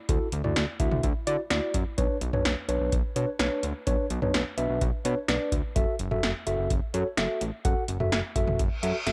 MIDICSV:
0, 0, Header, 1, 5, 480
1, 0, Start_track
1, 0, Key_signature, 2, "minor"
1, 0, Tempo, 472441
1, 90, Time_signature, 4, 2, 24, 8
1, 9269, End_track
2, 0, Start_track
2, 0, Title_t, "Tine electric piano"
2, 0, Program_c, 0, 4
2, 91, Note_on_c, 0, 64, 81
2, 91, Note_on_c, 0, 66, 74
2, 91, Note_on_c, 0, 69, 86
2, 276, Note_off_c, 0, 64, 0
2, 276, Note_off_c, 0, 66, 0
2, 276, Note_off_c, 0, 69, 0
2, 450, Note_on_c, 0, 66, 73
2, 450, Note_on_c, 0, 74, 88
2, 451, Note_on_c, 0, 64, 77
2, 636, Note_off_c, 0, 64, 0
2, 636, Note_off_c, 0, 66, 0
2, 636, Note_off_c, 0, 74, 0
2, 810, Note_on_c, 0, 64, 83
2, 810, Note_on_c, 0, 66, 74
2, 810, Note_on_c, 0, 76, 84
2, 1057, Note_off_c, 0, 64, 0
2, 1057, Note_off_c, 0, 66, 0
2, 1057, Note_off_c, 0, 76, 0
2, 1290, Note_on_c, 0, 64, 82
2, 1290, Note_on_c, 0, 66, 77
2, 1290, Note_on_c, 0, 74, 92
2, 1414, Note_off_c, 0, 64, 0
2, 1414, Note_off_c, 0, 66, 0
2, 1414, Note_off_c, 0, 74, 0
2, 1532, Note_on_c, 0, 64, 81
2, 1532, Note_on_c, 0, 66, 75
2, 1532, Note_on_c, 0, 74, 91
2, 1778, Note_off_c, 0, 64, 0
2, 1778, Note_off_c, 0, 66, 0
2, 1778, Note_off_c, 0, 74, 0
2, 2010, Note_on_c, 0, 62, 83
2, 2010, Note_on_c, 0, 71, 71
2, 2010, Note_on_c, 0, 73, 87
2, 2195, Note_off_c, 0, 73, 0
2, 2196, Note_off_c, 0, 62, 0
2, 2196, Note_off_c, 0, 71, 0
2, 2370, Note_on_c, 0, 62, 78
2, 2371, Note_on_c, 0, 71, 69
2, 2371, Note_on_c, 0, 73, 89
2, 2556, Note_off_c, 0, 62, 0
2, 2556, Note_off_c, 0, 71, 0
2, 2556, Note_off_c, 0, 73, 0
2, 2730, Note_on_c, 0, 62, 81
2, 2730, Note_on_c, 0, 71, 76
2, 2730, Note_on_c, 0, 73, 88
2, 2977, Note_off_c, 0, 62, 0
2, 2977, Note_off_c, 0, 71, 0
2, 2977, Note_off_c, 0, 73, 0
2, 3211, Note_on_c, 0, 62, 82
2, 3211, Note_on_c, 0, 71, 75
2, 3211, Note_on_c, 0, 73, 89
2, 3334, Note_off_c, 0, 62, 0
2, 3334, Note_off_c, 0, 71, 0
2, 3334, Note_off_c, 0, 73, 0
2, 3449, Note_on_c, 0, 62, 84
2, 3449, Note_on_c, 0, 71, 74
2, 3449, Note_on_c, 0, 73, 90
2, 3697, Note_off_c, 0, 62, 0
2, 3697, Note_off_c, 0, 71, 0
2, 3697, Note_off_c, 0, 73, 0
2, 3930, Note_on_c, 0, 62, 81
2, 3930, Note_on_c, 0, 71, 75
2, 3930, Note_on_c, 0, 73, 93
2, 4115, Note_off_c, 0, 62, 0
2, 4115, Note_off_c, 0, 71, 0
2, 4115, Note_off_c, 0, 73, 0
2, 4289, Note_on_c, 0, 71, 70
2, 4289, Note_on_c, 0, 73, 84
2, 4290, Note_on_c, 0, 62, 79
2, 4475, Note_off_c, 0, 62, 0
2, 4475, Note_off_c, 0, 71, 0
2, 4475, Note_off_c, 0, 73, 0
2, 4650, Note_on_c, 0, 62, 80
2, 4650, Note_on_c, 0, 71, 71
2, 4650, Note_on_c, 0, 76, 92
2, 4897, Note_off_c, 0, 62, 0
2, 4897, Note_off_c, 0, 71, 0
2, 4897, Note_off_c, 0, 76, 0
2, 5129, Note_on_c, 0, 71, 75
2, 5129, Note_on_c, 0, 73, 92
2, 5130, Note_on_c, 0, 62, 83
2, 5253, Note_off_c, 0, 71, 0
2, 5253, Note_off_c, 0, 73, 0
2, 5254, Note_off_c, 0, 62, 0
2, 5370, Note_on_c, 0, 62, 83
2, 5370, Note_on_c, 0, 71, 75
2, 5370, Note_on_c, 0, 74, 92
2, 5617, Note_off_c, 0, 62, 0
2, 5617, Note_off_c, 0, 71, 0
2, 5617, Note_off_c, 0, 74, 0
2, 5850, Note_on_c, 0, 66, 81
2, 5850, Note_on_c, 0, 69, 76
2, 5850, Note_on_c, 0, 76, 93
2, 6035, Note_off_c, 0, 66, 0
2, 6035, Note_off_c, 0, 69, 0
2, 6035, Note_off_c, 0, 76, 0
2, 6210, Note_on_c, 0, 66, 78
2, 6210, Note_on_c, 0, 69, 75
2, 6210, Note_on_c, 0, 76, 89
2, 6395, Note_off_c, 0, 66, 0
2, 6395, Note_off_c, 0, 69, 0
2, 6395, Note_off_c, 0, 76, 0
2, 6570, Note_on_c, 0, 66, 82
2, 6570, Note_on_c, 0, 69, 74
2, 6570, Note_on_c, 0, 76, 87
2, 6817, Note_off_c, 0, 66, 0
2, 6817, Note_off_c, 0, 69, 0
2, 6817, Note_off_c, 0, 76, 0
2, 7050, Note_on_c, 0, 73, 92
2, 7051, Note_on_c, 0, 66, 85
2, 7051, Note_on_c, 0, 69, 76
2, 7174, Note_off_c, 0, 66, 0
2, 7174, Note_off_c, 0, 69, 0
2, 7174, Note_off_c, 0, 73, 0
2, 7292, Note_on_c, 0, 66, 83
2, 7292, Note_on_c, 0, 69, 76
2, 7292, Note_on_c, 0, 76, 93
2, 7538, Note_off_c, 0, 66, 0
2, 7538, Note_off_c, 0, 69, 0
2, 7538, Note_off_c, 0, 76, 0
2, 7771, Note_on_c, 0, 66, 78
2, 7771, Note_on_c, 0, 69, 76
2, 7771, Note_on_c, 0, 78, 92
2, 7956, Note_off_c, 0, 66, 0
2, 7956, Note_off_c, 0, 69, 0
2, 7956, Note_off_c, 0, 78, 0
2, 8130, Note_on_c, 0, 76, 91
2, 8131, Note_on_c, 0, 66, 82
2, 8131, Note_on_c, 0, 69, 70
2, 8316, Note_off_c, 0, 66, 0
2, 8316, Note_off_c, 0, 69, 0
2, 8316, Note_off_c, 0, 76, 0
2, 8491, Note_on_c, 0, 76, 88
2, 8492, Note_on_c, 0, 66, 78
2, 8492, Note_on_c, 0, 69, 73
2, 8738, Note_off_c, 0, 66, 0
2, 8738, Note_off_c, 0, 69, 0
2, 8738, Note_off_c, 0, 76, 0
2, 8971, Note_on_c, 0, 66, 84
2, 8971, Note_on_c, 0, 69, 75
2, 8971, Note_on_c, 0, 76, 93
2, 9094, Note_off_c, 0, 66, 0
2, 9094, Note_off_c, 0, 69, 0
2, 9094, Note_off_c, 0, 76, 0
2, 9211, Note_on_c, 0, 69, 76
2, 9212, Note_on_c, 0, 66, 82
2, 9212, Note_on_c, 0, 76, 95
2, 9269, Note_off_c, 0, 66, 0
2, 9269, Note_off_c, 0, 69, 0
2, 9269, Note_off_c, 0, 76, 0
2, 9269, End_track
3, 0, Start_track
3, 0, Title_t, "Analog synth bass"
3, 0, Program_c, 1, 38
3, 91, Note_on_c, 1, 38, 104
3, 190, Note_off_c, 1, 38, 0
3, 330, Note_on_c, 1, 38, 101
3, 430, Note_off_c, 1, 38, 0
3, 450, Note_on_c, 1, 38, 99
3, 550, Note_off_c, 1, 38, 0
3, 571, Note_on_c, 1, 38, 98
3, 670, Note_off_c, 1, 38, 0
3, 810, Note_on_c, 1, 38, 98
3, 910, Note_off_c, 1, 38, 0
3, 931, Note_on_c, 1, 38, 86
3, 1031, Note_off_c, 1, 38, 0
3, 1052, Note_on_c, 1, 38, 104
3, 1151, Note_off_c, 1, 38, 0
3, 1291, Note_on_c, 1, 50, 98
3, 1390, Note_off_c, 1, 50, 0
3, 1530, Note_on_c, 1, 38, 90
3, 1630, Note_off_c, 1, 38, 0
3, 1770, Note_on_c, 1, 42, 86
3, 1870, Note_off_c, 1, 42, 0
3, 2012, Note_on_c, 1, 35, 112
3, 2111, Note_off_c, 1, 35, 0
3, 2250, Note_on_c, 1, 35, 98
3, 2350, Note_off_c, 1, 35, 0
3, 2370, Note_on_c, 1, 35, 92
3, 2470, Note_off_c, 1, 35, 0
3, 2489, Note_on_c, 1, 35, 101
3, 2589, Note_off_c, 1, 35, 0
3, 2729, Note_on_c, 1, 35, 103
3, 2830, Note_off_c, 1, 35, 0
3, 2849, Note_on_c, 1, 35, 90
3, 2949, Note_off_c, 1, 35, 0
3, 2972, Note_on_c, 1, 35, 104
3, 3071, Note_off_c, 1, 35, 0
3, 3209, Note_on_c, 1, 47, 102
3, 3310, Note_off_c, 1, 47, 0
3, 3450, Note_on_c, 1, 35, 103
3, 3550, Note_off_c, 1, 35, 0
3, 3690, Note_on_c, 1, 38, 90
3, 3790, Note_off_c, 1, 38, 0
3, 3931, Note_on_c, 1, 35, 102
3, 4030, Note_off_c, 1, 35, 0
3, 4171, Note_on_c, 1, 35, 110
3, 4271, Note_off_c, 1, 35, 0
3, 4290, Note_on_c, 1, 35, 97
3, 4390, Note_off_c, 1, 35, 0
3, 4410, Note_on_c, 1, 35, 103
3, 4510, Note_off_c, 1, 35, 0
3, 4650, Note_on_c, 1, 35, 103
3, 4750, Note_off_c, 1, 35, 0
3, 4770, Note_on_c, 1, 35, 91
3, 4870, Note_off_c, 1, 35, 0
3, 4891, Note_on_c, 1, 35, 106
3, 4990, Note_off_c, 1, 35, 0
3, 5131, Note_on_c, 1, 47, 101
3, 5231, Note_off_c, 1, 47, 0
3, 5371, Note_on_c, 1, 35, 96
3, 5470, Note_off_c, 1, 35, 0
3, 5609, Note_on_c, 1, 38, 91
3, 5710, Note_off_c, 1, 38, 0
3, 5851, Note_on_c, 1, 30, 108
3, 5951, Note_off_c, 1, 30, 0
3, 6091, Note_on_c, 1, 30, 105
3, 6190, Note_off_c, 1, 30, 0
3, 6210, Note_on_c, 1, 30, 101
3, 6310, Note_off_c, 1, 30, 0
3, 6331, Note_on_c, 1, 30, 96
3, 6430, Note_off_c, 1, 30, 0
3, 6571, Note_on_c, 1, 30, 97
3, 6671, Note_off_c, 1, 30, 0
3, 6691, Note_on_c, 1, 30, 98
3, 6790, Note_off_c, 1, 30, 0
3, 6812, Note_on_c, 1, 30, 102
3, 6911, Note_off_c, 1, 30, 0
3, 7051, Note_on_c, 1, 42, 108
3, 7151, Note_off_c, 1, 42, 0
3, 7291, Note_on_c, 1, 30, 94
3, 7390, Note_off_c, 1, 30, 0
3, 7531, Note_on_c, 1, 33, 86
3, 7631, Note_off_c, 1, 33, 0
3, 7771, Note_on_c, 1, 30, 105
3, 7871, Note_off_c, 1, 30, 0
3, 8011, Note_on_c, 1, 30, 98
3, 8111, Note_off_c, 1, 30, 0
3, 8131, Note_on_c, 1, 30, 91
3, 8231, Note_off_c, 1, 30, 0
3, 8251, Note_on_c, 1, 30, 104
3, 8351, Note_off_c, 1, 30, 0
3, 8491, Note_on_c, 1, 30, 102
3, 8590, Note_off_c, 1, 30, 0
3, 8611, Note_on_c, 1, 30, 96
3, 8711, Note_off_c, 1, 30, 0
3, 8732, Note_on_c, 1, 30, 112
3, 8831, Note_off_c, 1, 30, 0
3, 8972, Note_on_c, 1, 42, 96
3, 9071, Note_off_c, 1, 42, 0
3, 9212, Note_on_c, 1, 30, 99
3, 9269, Note_off_c, 1, 30, 0
3, 9269, End_track
4, 0, Start_track
4, 0, Title_t, "Reverse cymbal"
4, 0, Program_c, 2, 119
4, 8731, Note_on_c, 2, 60, 78
4, 9269, Note_off_c, 2, 60, 0
4, 9269, End_track
5, 0, Start_track
5, 0, Title_t, "Drums"
5, 90, Note_on_c, 9, 42, 76
5, 91, Note_on_c, 9, 36, 113
5, 192, Note_off_c, 9, 36, 0
5, 192, Note_off_c, 9, 42, 0
5, 328, Note_on_c, 9, 42, 74
5, 430, Note_off_c, 9, 42, 0
5, 449, Note_on_c, 9, 45, 81
5, 551, Note_off_c, 9, 45, 0
5, 571, Note_on_c, 9, 38, 112
5, 572, Note_on_c, 9, 42, 61
5, 672, Note_off_c, 9, 38, 0
5, 673, Note_off_c, 9, 42, 0
5, 809, Note_on_c, 9, 42, 72
5, 810, Note_on_c, 9, 36, 86
5, 911, Note_off_c, 9, 36, 0
5, 911, Note_off_c, 9, 42, 0
5, 929, Note_on_c, 9, 47, 88
5, 1030, Note_off_c, 9, 47, 0
5, 1051, Note_on_c, 9, 42, 64
5, 1052, Note_on_c, 9, 36, 92
5, 1152, Note_off_c, 9, 42, 0
5, 1153, Note_off_c, 9, 36, 0
5, 1290, Note_on_c, 9, 42, 80
5, 1392, Note_off_c, 9, 42, 0
5, 1528, Note_on_c, 9, 38, 108
5, 1531, Note_on_c, 9, 42, 72
5, 1630, Note_off_c, 9, 38, 0
5, 1633, Note_off_c, 9, 42, 0
5, 1769, Note_on_c, 9, 36, 79
5, 1770, Note_on_c, 9, 42, 78
5, 1871, Note_off_c, 9, 36, 0
5, 1871, Note_off_c, 9, 42, 0
5, 2011, Note_on_c, 9, 36, 113
5, 2011, Note_on_c, 9, 42, 78
5, 2112, Note_off_c, 9, 42, 0
5, 2113, Note_off_c, 9, 36, 0
5, 2249, Note_on_c, 9, 42, 72
5, 2350, Note_off_c, 9, 42, 0
5, 2370, Note_on_c, 9, 45, 82
5, 2471, Note_off_c, 9, 45, 0
5, 2491, Note_on_c, 9, 38, 110
5, 2492, Note_on_c, 9, 42, 58
5, 2593, Note_off_c, 9, 38, 0
5, 2594, Note_off_c, 9, 42, 0
5, 2730, Note_on_c, 9, 42, 72
5, 2832, Note_off_c, 9, 42, 0
5, 2970, Note_on_c, 9, 42, 66
5, 2971, Note_on_c, 9, 36, 93
5, 3072, Note_off_c, 9, 42, 0
5, 3073, Note_off_c, 9, 36, 0
5, 3211, Note_on_c, 9, 42, 81
5, 3312, Note_off_c, 9, 42, 0
5, 3448, Note_on_c, 9, 38, 110
5, 3451, Note_on_c, 9, 42, 75
5, 3550, Note_off_c, 9, 38, 0
5, 3552, Note_off_c, 9, 42, 0
5, 3690, Note_on_c, 9, 42, 78
5, 3791, Note_off_c, 9, 42, 0
5, 3930, Note_on_c, 9, 42, 78
5, 3931, Note_on_c, 9, 36, 107
5, 4031, Note_off_c, 9, 42, 0
5, 4032, Note_off_c, 9, 36, 0
5, 4168, Note_on_c, 9, 42, 72
5, 4270, Note_off_c, 9, 42, 0
5, 4289, Note_on_c, 9, 45, 81
5, 4391, Note_off_c, 9, 45, 0
5, 4411, Note_on_c, 9, 38, 114
5, 4412, Note_on_c, 9, 42, 58
5, 4513, Note_off_c, 9, 38, 0
5, 4513, Note_off_c, 9, 42, 0
5, 4649, Note_on_c, 9, 42, 72
5, 4751, Note_off_c, 9, 42, 0
5, 4890, Note_on_c, 9, 42, 66
5, 4891, Note_on_c, 9, 36, 92
5, 4992, Note_off_c, 9, 42, 0
5, 4993, Note_off_c, 9, 36, 0
5, 5131, Note_on_c, 9, 42, 78
5, 5232, Note_off_c, 9, 42, 0
5, 5369, Note_on_c, 9, 38, 110
5, 5371, Note_on_c, 9, 42, 73
5, 5470, Note_off_c, 9, 38, 0
5, 5473, Note_off_c, 9, 42, 0
5, 5609, Note_on_c, 9, 36, 82
5, 5610, Note_on_c, 9, 42, 82
5, 5711, Note_off_c, 9, 36, 0
5, 5712, Note_off_c, 9, 42, 0
5, 5851, Note_on_c, 9, 36, 114
5, 5851, Note_on_c, 9, 42, 77
5, 5952, Note_off_c, 9, 42, 0
5, 5953, Note_off_c, 9, 36, 0
5, 6089, Note_on_c, 9, 42, 73
5, 6190, Note_off_c, 9, 42, 0
5, 6210, Note_on_c, 9, 45, 82
5, 6311, Note_off_c, 9, 45, 0
5, 6332, Note_on_c, 9, 38, 110
5, 6333, Note_on_c, 9, 42, 60
5, 6433, Note_off_c, 9, 38, 0
5, 6434, Note_off_c, 9, 42, 0
5, 6570, Note_on_c, 9, 42, 72
5, 6672, Note_off_c, 9, 42, 0
5, 6811, Note_on_c, 9, 42, 65
5, 6812, Note_on_c, 9, 36, 91
5, 6913, Note_off_c, 9, 36, 0
5, 6913, Note_off_c, 9, 42, 0
5, 7051, Note_on_c, 9, 42, 81
5, 7152, Note_off_c, 9, 42, 0
5, 7289, Note_on_c, 9, 38, 112
5, 7291, Note_on_c, 9, 42, 74
5, 7390, Note_off_c, 9, 38, 0
5, 7393, Note_off_c, 9, 42, 0
5, 7530, Note_on_c, 9, 42, 78
5, 7632, Note_off_c, 9, 42, 0
5, 7771, Note_on_c, 9, 36, 110
5, 7771, Note_on_c, 9, 42, 77
5, 7872, Note_off_c, 9, 42, 0
5, 7873, Note_off_c, 9, 36, 0
5, 8009, Note_on_c, 9, 42, 74
5, 8111, Note_off_c, 9, 42, 0
5, 8130, Note_on_c, 9, 45, 81
5, 8231, Note_off_c, 9, 45, 0
5, 8252, Note_on_c, 9, 38, 115
5, 8253, Note_on_c, 9, 42, 60
5, 8354, Note_off_c, 9, 38, 0
5, 8354, Note_off_c, 9, 42, 0
5, 8490, Note_on_c, 9, 36, 87
5, 8491, Note_on_c, 9, 42, 72
5, 8592, Note_off_c, 9, 36, 0
5, 8592, Note_off_c, 9, 42, 0
5, 8609, Note_on_c, 9, 47, 86
5, 8711, Note_off_c, 9, 47, 0
5, 8731, Note_on_c, 9, 42, 65
5, 8732, Note_on_c, 9, 36, 94
5, 8833, Note_off_c, 9, 42, 0
5, 8834, Note_off_c, 9, 36, 0
5, 8971, Note_on_c, 9, 42, 76
5, 9073, Note_off_c, 9, 42, 0
5, 9211, Note_on_c, 9, 38, 55
5, 9212, Note_on_c, 9, 42, 73
5, 9269, Note_off_c, 9, 38, 0
5, 9269, Note_off_c, 9, 42, 0
5, 9269, End_track
0, 0, End_of_file